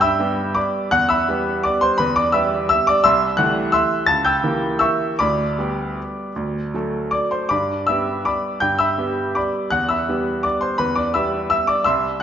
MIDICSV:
0, 0, Header, 1, 2, 480
1, 0, Start_track
1, 0, Key_signature, 1, "major"
1, 0, Tempo, 357995
1, 1234, Time_signature, 3, 2, 24, 8
1, 3625, Tempo, 345026
1, 6025, Tempo, 382897
1, 10825, Tempo, 362976
1, 14185, Tempo, 351494
1, 16136, End_track
2, 0, Start_track
2, 0, Title_t, "Grand piano"
2, 0, Program_c, 0, 0
2, 0, Control_c, 0, 64, 127
2, 0, Note_on_c, 0, 43, 69
2, 0, Note_on_c, 0, 79, 81
2, 0, Note_on_c, 0, 91, 96
2, 12, Note_on_c, 0, 88, 99
2, 24, Note_on_c, 0, 83, 76
2, 26, Note_on_c, 0, 76, 78
2, 258, Note_off_c, 0, 43, 0
2, 258, Note_on_c, 0, 55, 53
2, 268, Note_on_c, 0, 59, 47
2, 275, Note_on_c, 0, 67, 56
2, 702, Note_off_c, 0, 83, 0
2, 704, Note_off_c, 0, 76, 0
2, 732, Note_on_c, 0, 86, 84
2, 746, Note_on_c, 0, 83, 53
2, 747, Note_off_c, 0, 88, 0
2, 749, Note_on_c, 0, 74, 56
2, 772, Control_c, 0, 64, 0
2, 787, Note_off_c, 0, 79, 0
2, 787, Note_off_c, 0, 91, 0
2, 1177, Note_off_c, 0, 55, 0
2, 1182, Note_off_c, 0, 59, 0
2, 1185, Note_off_c, 0, 67, 0
2, 1196, Note_off_c, 0, 83, 0
2, 1197, Note_off_c, 0, 74, 0
2, 1222, Note_off_c, 0, 86, 0
2, 1223, Note_on_c, 0, 90, 121
2, 1232, Note_on_c, 0, 78, 92
2, 1238, Note_on_c, 0, 40, 62
2, 1454, Note_off_c, 0, 78, 0
2, 1457, Note_on_c, 0, 88, 86
2, 1466, Note_off_c, 0, 90, 0
2, 1471, Note_on_c, 0, 76, 69
2, 1475, Note_on_c, 0, 83, 74
2, 1520, Control_c, 0, 64, 127
2, 1703, Note_off_c, 0, 40, 0
2, 1724, Note_on_c, 0, 55, 50
2, 1736, Note_on_c, 0, 59, 48
2, 1742, Note_on_c, 0, 67, 54
2, 2152, Note_off_c, 0, 76, 0
2, 2154, Note_off_c, 0, 83, 0
2, 2192, Note_on_c, 0, 86, 86
2, 2196, Note_off_c, 0, 88, 0
2, 2208, Note_on_c, 0, 74, 78
2, 2216, Control_c, 0, 64, 0
2, 2428, Note_off_c, 0, 74, 0
2, 2428, Note_on_c, 0, 84, 99
2, 2436, Note_off_c, 0, 86, 0
2, 2447, Note_on_c, 0, 72, 74
2, 2626, Note_off_c, 0, 55, 0
2, 2632, Note_off_c, 0, 59, 0
2, 2635, Note_off_c, 0, 67, 0
2, 2651, Note_on_c, 0, 83, 105
2, 2662, Note_off_c, 0, 72, 0
2, 2668, Note_off_c, 0, 84, 0
2, 2672, Note_on_c, 0, 71, 71
2, 2678, Note_on_c, 0, 40, 61
2, 2891, Note_off_c, 0, 71, 0
2, 2894, Note_on_c, 0, 86, 100
2, 2897, Note_off_c, 0, 83, 0
2, 2910, Control_c, 0, 64, 127
2, 2913, Note_on_c, 0, 74, 73
2, 3116, Note_on_c, 0, 88, 86
2, 3131, Note_off_c, 0, 74, 0
2, 3132, Note_off_c, 0, 40, 0
2, 3132, Note_on_c, 0, 83, 71
2, 3135, Note_on_c, 0, 76, 70
2, 3138, Note_off_c, 0, 86, 0
2, 3141, Note_on_c, 0, 55, 50
2, 3144, Note_on_c, 0, 59, 49
2, 3151, Note_on_c, 0, 67, 54
2, 3584, Note_off_c, 0, 83, 0
2, 3586, Note_off_c, 0, 76, 0
2, 3588, Note_off_c, 0, 88, 0
2, 3608, Note_on_c, 0, 88, 103
2, 3626, Note_on_c, 0, 76, 79
2, 3638, Control_c, 0, 64, 0
2, 3854, Note_off_c, 0, 76, 0
2, 3858, Note_on_c, 0, 86, 105
2, 3862, Note_off_c, 0, 88, 0
2, 3881, Note_on_c, 0, 74, 81
2, 4046, Note_off_c, 0, 55, 0
2, 4047, Note_off_c, 0, 59, 0
2, 4051, Note_off_c, 0, 67, 0
2, 4089, Note_on_c, 0, 88, 117
2, 4093, Note_off_c, 0, 74, 0
2, 4097, Note_off_c, 0, 86, 0
2, 4100, Note_on_c, 0, 84, 81
2, 4106, Note_on_c, 0, 76, 80
2, 4111, Note_on_c, 0, 36, 70
2, 4368, Control_c, 0, 64, 127
2, 4534, Note_off_c, 0, 84, 0
2, 4537, Note_off_c, 0, 76, 0
2, 4552, Note_on_c, 0, 90, 111
2, 4558, Note_off_c, 0, 36, 0
2, 4561, Note_off_c, 0, 88, 0
2, 4569, Note_on_c, 0, 78, 72
2, 4572, Note_on_c, 0, 52, 58
2, 4575, Note_on_c, 0, 57, 54
2, 4590, Note_on_c, 0, 67, 53
2, 5024, Note_off_c, 0, 78, 0
2, 5042, Note_on_c, 0, 88, 100
2, 5050, Note_off_c, 0, 90, 0
2, 5058, Note_on_c, 0, 84, 81
2, 5060, Note_on_c, 0, 76, 78
2, 5072, Control_c, 0, 64, 0
2, 5488, Note_off_c, 0, 52, 0
2, 5489, Note_off_c, 0, 57, 0
2, 5496, Note_off_c, 0, 67, 0
2, 5508, Note_off_c, 0, 84, 0
2, 5509, Note_off_c, 0, 76, 0
2, 5519, Note_on_c, 0, 93, 116
2, 5533, Note_off_c, 0, 88, 0
2, 5543, Note_on_c, 0, 81, 91
2, 5552, Note_on_c, 0, 37, 61
2, 5762, Note_off_c, 0, 81, 0
2, 5766, Note_off_c, 0, 93, 0
2, 5770, Note_on_c, 0, 91, 97
2, 5784, Note_on_c, 0, 79, 67
2, 5786, Note_on_c, 0, 88, 72
2, 5814, Control_c, 0, 64, 127
2, 6016, Note_off_c, 0, 37, 0
2, 6033, Note_on_c, 0, 52, 49
2, 6033, Note_on_c, 0, 58, 52
2, 6043, Note_on_c, 0, 67, 47
2, 6452, Note_off_c, 0, 79, 0
2, 6454, Note_off_c, 0, 88, 0
2, 6479, Note_on_c, 0, 88, 93
2, 6495, Note_off_c, 0, 91, 0
2, 6495, Note_on_c, 0, 76, 70
2, 6497, Note_on_c, 0, 85, 71
2, 6511, Control_c, 0, 64, 0
2, 6937, Note_off_c, 0, 52, 0
2, 6937, Note_off_c, 0, 58, 0
2, 6942, Note_off_c, 0, 67, 0
2, 6948, Note_off_c, 0, 76, 0
2, 6948, Note_off_c, 0, 85, 0
2, 6974, Note_off_c, 0, 88, 0
2, 6976, Note_on_c, 0, 86, 96
2, 6989, Note_on_c, 0, 83, 78
2, 6993, Note_on_c, 0, 74, 70
2, 6996, Note_on_c, 0, 38, 65
2, 7249, Control_c, 0, 64, 127
2, 7460, Note_off_c, 0, 38, 0
2, 7473, Note_on_c, 0, 55, 44
2, 7480, Note_on_c, 0, 59, 45
2, 7482, Note_on_c, 0, 67, 53
2, 7972, Control_c, 0, 64, 0
2, 8388, Note_off_c, 0, 55, 0
2, 8392, Note_off_c, 0, 59, 0
2, 8393, Note_off_c, 0, 67, 0
2, 8445, Note_on_c, 0, 38, 54
2, 8707, Control_c, 0, 64, 127
2, 8906, Note_off_c, 0, 38, 0
2, 8924, Note_on_c, 0, 54, 40
2, 8934, Note_on_c, 0, 57, 41
2, 8942, Note_on_c, 0, 69, 43
2, 9354, Note_off_c, 0, 83, 0
2, 9356, Note_off_c, 0, 74, 0
2, 9367, Note_off_c, 0, 86, 0
2, 9386, Note_on_c, 0, 86, 81
2, 9403, Note_on_c, 0, 74, 61
2, 9413, Control_c, 0, 64, 0
2, 9627, Note_off_c, 0, 74, 0
2, 9635, Note_off_c, 0, 86, 0
2, 9637, Note_on_c, 0, 84, 69
2, 9646, Note_on_c, 0, 72, 52
2, 9833, Note_off_c, 0, 54, 0
2, 9838, Note_off_c, 0, 57, 0
2, 9842, Note_off_c, 0, 69, 0
2, 9861, Note_on_c, 0, 86, 90
2, 9864, Note_off_c, 0, 72, 0
2, 9876, Note_off_c, 0, 84, 0
2, 9878, Note_on_c, 0, 83, 66
2, 9880, Note_on_c, 0, 74, 59
2, 9884, Note_on_c, 0, 43, 55
2, 10115, Control_c, 0, 64, 127
2, 10315, Note_off_c, 0, 83, 0
2, 10316, Note_off_c, 0, 74, 0
2, 10334, Note_on_c, 0, 88, 87
2, 10337, Note_off_c, 0, 43, 0
2, 10340, Note_off_c, 0, 86, 0
2, 10355, Note_on_c, 0, 76, 64
2, 10361, Note_on_c, 0, 55, 44
2, 10365, Note_on_c, 0, 59, 40
2, 10369, Note_on_c, 0, 67, 47
2, 10795, Note_off_c, 0, 76, 0
2, 10818, Note_off_c, 0, 88, 0
2, 10818, Note_on_c, 0, 86, 80
2, 10825, Note_on_c, 0, 74, 56
2, 10825, Note_on_c, 0, 83, 59
2, 10846, Control_c, 0, 64, 0
2, 11265, Note_off_c, 0, 55, 0
2, 11267, Note_off_c, 0, 59, 0
2, 11269, Note_off_c, 0, 67, 0
2, 11277, Note_off_c, 0, 74, 0
2, 11277, Note_off_c, 0, 83, 0
2, 11282, Note_on_c, 0, 91, 101
2, 11298, Note_on_c, 0, 79, 67
2, 11303, Note_on_c, 0, 43, 51
2, 11307, Note_off_c, 0, 86, 0
2, 11523, Note_off_c, 0, 79, 0
2, 11523, Note_on_c, 0, 88, 92
2, 11532, Note_off_c, 0, 91, 0
2, 11539, Note_on_c, 0, 76, 68
2, 11541, Note_on_c, 0, 83, 62
2, 11572, Control_c, 0, 64, 127
2, 11770, Note_off_c, 0, 43, 0
2, 11779, Note_on_c, 0, 55, 41
2, 11787, Note_on_c, 0, 67, 46
2, 11790, Note_on_c, 0, 59, 39
2, 12230, Note_off_c, 0, 76, 0
2, 12231, Note_off_c, 0, 83, 0
2, 12270, Note_on_c, 0, 86, 71
2, 12274, Note_off_c, 0, 88, 0
2, 12285, Note_on_c, 0, 83, 52
2, 12289, Note_on_c, 0, 74, 52
2, 12305, Control_c, 0, 64, 0
2, 12700, Note_off_c, 0, 55, 0
2, 12704, Note_off_c, 0, 67, 0
2, 12705, Note_off_c, 0, 59, 0
2, 12724, Note_off_c, 0, 83, 0
2, 12726, Note_off_c, 0, 74, 0
2, 12739, Note_on_c, 0, 90, 105
2, 12750, Note_off_c, 0, 86, 0
2, 12756, Note_on_c, 0, 78, 75
2, 12761, Note_on_c, 0, 40, 53
2, 12971, Note_off_c, 0, 78, 0
2, 12978, Note_on_c, 0, 88, 75
2, 12979, Note_off_c, 0, 90, 0
2, 12998, Note_on_c, 0, 76, 51
2, 12999, Note_on_c, 0, 83, 58
2, 13024, Control_c, 0, 64, 127
2, 13215, Note_off_c, 0, 40, 0
2, 13244, Note_on_c, 0, 55, 42
2, 13249, Note_on_c, 0, 59, 45
2, 13256, Note_on_c, 0, 67, 49
2, 13665, Note_off_c, 0, 76, 0
2, 13666, Note_off_c, 0, 83, 0
2, 13700, Note_on_c, 0, 86, 76
2, 13705, Note_off_c, 0, 88, 0
2, 13718, Note_on_c, 0, 74, 68
2, 13730, Control_c, 0, 64, 0
2, 13934, Note_on_c, 0, 84, 80
2, 13938, Note_off_c, 0, 74, 0
2, 13945, Note_off_c, 0, 86, 0
2, 13951, Note_on_c, 0, 72, 59
2, 14141, Note_off_c, 0, 55, 0
2, 14143, Note_off_c, 0, 59, 0
2, 14147, Note_off_c, 0, 67, 0
2, 14162, Note_on_c, 0, 83, 93
2, 14169, Note_off_c, 0, 72, 0
2, 14175, Note_on_c, 0, 71, 66
2, 14177, Note_off_c, 0, 84, 0
2, 14178, Note_on_c, 0, 40, 61
2, 14399, Note_on_c, 0, 86, 81
2, 14404, Note_off_c, 0, 71, 0
2, 14408, Control_c, 0, 64, 127
2, 14413, Note_on_c, 0, 74, 65
2, 14415, Note_off_c, 0, 83, 0
2, 14647, Note_off_c, 0, 74, 0
2, 14650, Note_on_c, 0, 88, 75
2, 14653, Note_off_c, 0, 40, 0
2, 14657, Note_off_c, 0, 86, 0
2, 14660, Note_on_c, 0, 76, 59
2, 14663, Note_on_c, 0, 83, 63
2, 14669, Note_on_c, 0, 55, 41
2, 14674, Note_on_c, 0, 59, 44
2, 14676, Note_on_c, 0, 67, 51
2, 15121, Note_off_c, 0, 88, 0
2, 15123, Note_off_c, 0, 76, 0
2, 15124, Note_off_c, 0, 83, 0
2, 15141, Note_on_c, 0, 88, 94
2, 15157, Note_on_c, 0, 76, 67
2, 15183, Control_c, 0, 64, 0
2, 15380, Note_on_c, 0, 86, 88
2, 15383, Note_off_c, 0, 76, 0
2, 15393, Note_off_c, 0, 88, 0
2, 15399, Note_on_c, 0, 74, 71
2, 15579, Note_off_c, 0, 55, 0
2, 15581, Note_off_c, 0, 59, 0
2, 15582, Note_off_c, 0, 67, 0
2, 15613, Note_on_c, 0, 88, 94
2, 15616, Note_off_c, 0, 74, 0
2, 15623, Note_off_c, 0, 86, 0
2, 15631, Note_on_c, 0, 76, 73
2, 15633, Note_on_c, 0, 84, 74
2, 15642, Note_on_c, 0, 36, 63
2, 15874, Control_c, 0, 64, 127
2, 16070, Note_off_c, 0, 76, 0
2, 16072, Note_off_c, 0, 84, 0
2, 16095, Note_off_c, 0, 36, 0
2, 16095, Note_off_c, 0, 88, 0
2, 16136, End_track
0, 0, End_of_file